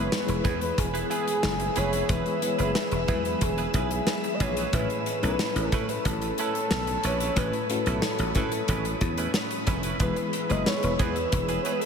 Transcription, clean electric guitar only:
0.12 muted clean electric guitar stroke soft
0.28 muted clean electric guitar stroke soft
0.44 0.60 B3 medium
0.44 0.60 E4 medium
0.44 0.60 G#4 medium
0.44 0.60 B4 medium
0.61 muted clean electric guitar stroke soft
0.77 muted clean electric guitar stroke soft
0.94 1.07 B3 soft
0.94 1.06 E4 medium
0.94 1.06 G#4 medium
0.94 1.06 B4 medium
1.10 1.26 B3 medium
1.10 1.26 E4 medium
1.10 1.26 G#4 medium
1.10 1.26 B4 medium
1.27 muted clean electric guitar stroke soft
1.44 muted clean electric guitar stroke soft
1.60 muted clean electric guitar stroke soft
1.76 1.92 B3 medium
1.76 1.92 E4 medium
1.76 1.92 G#4 medium
1.76 1.91 B4 medium
1.92 2.05 B3 soft
1.92 2.05 E4 soft
1.92 2.05 G#4 soft
1.92 2.05 B4 medium
2.09 2.25 B3 medium
2.09 2.25 E4 medium
2.09 2.25 G#4 medium
2.09 2.25 B4 medium
2.26 muted clean electric guitar stroke soft
2.42 muted clean electric guitar stroke soft
2.58 2.71 B3 soft
2.58 2.71 E4 soft
2.58 2.71 G#4 medium
2.58 2.71 B4 medium
2.75 muted clean electric guitar stroke soft
2.92 muted clean electric guitar stroke soft
3.08 3.24 B3 medium
3.08 3.24 E4 medium
3.08 3.24 G#4 medium
3.08 3.24 B4 medium
3.25 muted clean electric guitar stroke soft
3.42 muted clean electric guitar stroke soft
3.58 3.71 B3 soft
3.58 3.70 E4 medium
3.58 3.70 G#4 medium
3.58 3.70 B4 medium
3.75 3.90 B3 medium
3.75 3.90 E4 medium
3.75 3.90 G#4 medium
3.75 3.90 B4 medium
3.91 muted clean electric guitar stroke soft
4.08 muted clean electric guitar stroke soft
4.24 muted clean electric guitar stroke soft
4.41 4.56 B3 medium
4.41 4.56 E4 medium
4.41 4.56 G#4 medium
4.41 4.56 B4 medium
4.57 4.70 B3 soft
4.57 4.69 E4 soft
4.57 4.69 G#4 medium
4.57 4.69 B4 medium
4.74 4.89 A3 medium
4.74 4.89 C#4 medium
4.74 4.89 E4 medium
4.74 4.89 B4 medium
4.90 muted clean electric guitar stroke soft
5.07 muted clean electric guitar stroke soft
5.23 5.36 A3 soft
5.23 5.35 C#4 soft
5.23 5.35 E4 soft
5.23 5.35 B4 medium
5.40 muted clean electric guitar stroke soft
5.56 muted clean electric guitar stroke soft
5.73 5.88 A3 medium
5.73 5.88 C#4 medium
5.73 5.88 E4 medium
5.73 5.89 B4 medium
5.90 muted clean electric guitar stroke soft
6.06 muted clean electric guitar stroke soft
6.22 muted clean electric guitar stroke soft
6.39 6.54 A3 medium
6.39 6.54 C#4 medium
6.39 6.55 E4 medium
6.39 6.54 B4 medium
6.55 muted clean electric guitar stroke soft
6.72 muted clean electric guitar stroke soft
6.88 muted clean electric guitar stroke soft
7.04 7.20 A3 medium
7.04 7.20 C#4 medium
7.04 7.19 E4 medium
7.04 7.19 B4 medium
7.20 7.33 A3 soft
7.20 7.33 C#4 soft
7.20 7.33 E4 soft
7.20 7.32 B4 medium
7.37 7.53 A3 medium
7.37 7.53 C#4 medium
7.37 7.53 E4 medium
7.37 7.53 B4 medium
7.54 muted clean electric guitar stroke soft
7.71 muted clean electric guitar stroke soft
7.87 7.99 A3 soft
7.87 7.99 C#4 medium
7.87 7.99 E4 medium
7.87 7.99 B4 medium
8.03 muted clean electric guitar stroke soft
8.20 muted clean electric guitar stroke soft
8.36 8.52 A3 medium
8.36 8.52 C#4 medium
8.36 8.52 E4 medium
8.36 8.52 B4 medium
8.53 muted clean electric guitar stroke soft
8.69 8.85 A3 medium
8.69 8.85 C#4 medium
8.69 8.85 E4 medium
8.69 8.84 B4 medium
8.86 muted clean electric guitar stroke soft
9.02 muted clean electric guitar stroke soft
9.18 9.31 A3 soft
9.18 9.31 C#4 medium
9.18 9.31 E4 medium
9.18 9.30 B4 medium
9.35 muted clean electric guitar stroke soft
9.51 muted clean electric guitar stroke soft
9.67 9.83 A3 medium
9.67 9.83 C#4 medium
9.67 9.83 E4 medium
9.67 9.82 B4 medium
9.84 9.97 A3 soft
9.84 9.96 C#4 soft
9.84 9.96 E4 soft
9.84 9.96 B4 soft
10.00 10.16 B3 medium
10.00 10.16 E4 medium
10.00 10.16 G#4 medium
10.00 10.16 B4 medium
10.17 muted clean electric guitar stroke soft
10.34 muted clean electric guitar stroke soft
10.50 10.62 B3 soft
10.50 10.62 E4 soft
10.50 10.62 G#4 medium
10.50 10.62 B4 medium
10.66 muted clean electric guitar stroke soft
10.83 muted clean electric guitar stroke soft
10.99 11.15 B3 medium
10.99 11.15 E4 medium
10.99 11.15 G#4 medium
10.99 11.15 B4 medium
11.16 muted clean electric guitar stroke soft
11.33 muted clean electric guitar stroke soft
11.49 11.62 B3 soft
11.49 11.61 E4 soft
11.49 11.61 G#4 medium
11.49 11.61 B4 medium
11.65 11.81 B3 medium
11.65 11.81 E4 medium
11.65 11.81 G#4 medium
11.65 11.80 B4 medium
11.82 muted clean electric guitar stroke soft

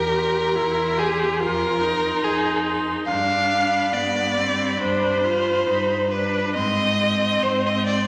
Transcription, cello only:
0.00 0.46 E2 medium
0.57 1.31 E2 medium
1.42 2.14 F2 medium
2.25 2.98 F2 medium
3.09 3.84 G2 medium
3.94 4.71 G2 medium
4.82 5.58 G2 medium
5.68 6.45 G2 medium
6.55 7.33 G#2 medium
7.43 8.07 G#2 medium

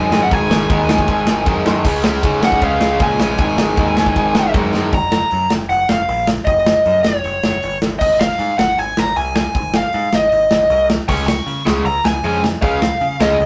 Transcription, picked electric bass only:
0.00 0.11 F#2 medium
0.12 0.31 F#2 loud
0.32 0.69 G#1 medium
0.70 1.07 D#2 loud
1.08 1.27 G#1 medium
1.27 1.46 G#1 medium
1.46 1.65 F#2 medium
1.66 1.84 F#2 loud
1.84 2.22 C#2 loud
2.24 2.61 G#2 medium
2.61 2.80 C#2 medium
2.81 3.00 C#2 loud
3.00 3.19 A#2 loud
3.19 3.38 A#1 medium
3.39 3.76 G#1 loud
3.78 4.15 D#2 medium
4.16 4.35 G#1 medium
4.36 4.54 G#1 medium
4.54 4.73 F#2 loud
4.75 4.92 F#2 medium
4.93 5.21 F#1 medium
5.32 5.46 F#2 medium
5.52 5.66 F#1 medium
5.69 5.84 F#1 loud
5.90 6.04 F#1 medium
6.08 6.37 A#1 medium
6.47 6.75 F#1 medium
6.86 7.00 F#2 medium
7.05 7.19 F#1 medium
7.24 7.38 F#1 medium
7.43 7.58 F#1 medium
7.63 7.77 G1 medium
7.82 7.96 G#1 medium
8.02 8.30 G#1 medium
8.39 8.53 G#2 loud
8.58 8.73 G#1 medium
8.77 8.92 G#1 medium
8.98 9.12 G#1 medium
9.17 9.45 C2 medium
9.55 9.84 G#1 medium
9.94 10.08 G#2 loud
10.13 10.28 G#1 medium
10.32 10.46 G#1 medium
10.51 10.66 G#1 medium
10.70 10.99 C2 medium
11.09 11.38 C#2 medium
11.46 11.61 C#3 loud
11.66 11.81 C#2 medium
11.84 11.99 C#2 medium
12.04 12.19 C#2 medium
12.23 12.53 F2 medium
12.63 12.91 C#2 medium
13.01 13.16 C#3 loud
13.20 13.35 C#2 medium
13.40 13.46 C#2 loud

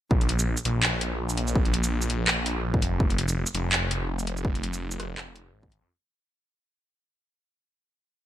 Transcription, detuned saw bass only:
0.11 0.56 A#1 loud
0.65 2.09 A#1 loud
2.10 2.81 A#1 medium
2.82 3.45 F1 loud
3.54 4.98 F1 loud
4.99 5.52 F1 loud
5.53 5.80 G#1 medium
5.81 5.89 F2 medium

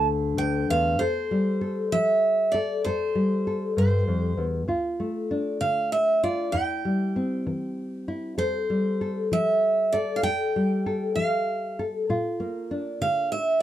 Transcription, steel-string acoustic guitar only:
0.38 0.68 G5 medium
0.70 0.99 F5 medium
0.99 1.94 C5 medium
1.92 2.55 E5 medium
2.52 2.81 D5 medium
2.84 3.73 C5 medium
3.78 4.43 C5 medium
5.61 5.92 F5 medium
5.92 6.21 E5 medium
6.23 6.52 D5 medium
6.52 8.03 G5 medium
8.38 9.27 C5 medium
9.33 9.95 E5 medium
9.93 10.17 D5 medium
10.16 10.23 F5 medium
10.23 11.12 G5 medium
11.16 11.81 F5 medium
13.02 13.31 F5 medium
13.32 13.62 E5 medium

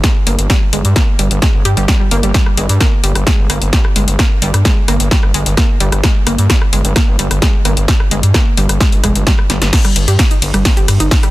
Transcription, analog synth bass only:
0.27 0.36 G1 loud
0.39 0.48 G1 medium
0.73 0.82 G1 medium
0.85 0.94 G2 medium
1.19 1.29 G1 medium
1.31 1.40 G1 medium
1.54 1.63 G1 medium
1.65 1.75 G2 medium
1.77 1.86 G1 medium
2.11 2.21 G1 loud
2.23 2.32 G1 medium
2.57 2.67 G1 medium
2.69 2.78 G2 medium
3.04 3.13 G1 medium
3.16 3.25 G1 medium
3.39 3.48 G1 medium
3.50 3.59 G1 medium
3.62 3.71 G1 medium
3.96 4.05 G1 medium
4.08 4.17 G1 medium
4.42 4.52 G1 medium
4.54 4.63 G2 medium
4.88 4.98 G1 medium
5.00 5.09 G1 medium
5.23 5.32 G1 medium
5.34 5.44 G1 medium
5.46 5.55 G1 medium
5.81 5.90 G1 medium
5.92 6.01 G1 medium
6.27 6.36 G1 medium
6.38 6.48 G2 medium
6.73 6.82 G1 medium
6.85 6.94 G1 medium
7.08 7.17 G1 medium
7.19 7.28 G1 medium
7.31 7.40 G1 medium
7.65 7.75 G1 medium
7.77 7.86 G1 medium
8.11 8.21 G1 medium
8.23 8.32 G2 medium
8.57 8.67 G1 loud
8.69 8.78 G1 medium
8.92 9.01 G1 medium
9.04 9.13 F1 medium
9.15 9.24 G1 medium
9.50 9.59 G1 medium
9.62 9.71 G1 medium
9.96 10.05 G1 medium
10.08 10.17 G2 medium
10.42 10.52 G1 loud
10.54 10.63 G1 medium
10.77 10.86 G1 medium
10.88 10.98 G2 medium
11.00 11.09 G1 medium

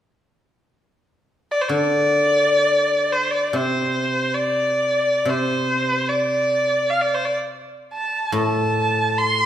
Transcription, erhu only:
1.51 1.63 D5 medium
1.62 1.71 C5 medium
1.69 3.14 D5 medium
3.13 3.32 C5 medium
3.31 3.47 D5 medium
3.47 3.58 D5 soft
3.56 4.36 C5 medium
4.34 5.31 D5 medium
5.29 6.11 C5 medium
6.09 6.91 D5 medium
6.90 7.03 F5 medium
7.01 7.16 D5 medium
7.14 7.27 C5 medium
7.25 7.36 D5 medium
7.94 8.36 A5 medium
8.39 9.19 A5 medium
9.18 9.46 C6 medium

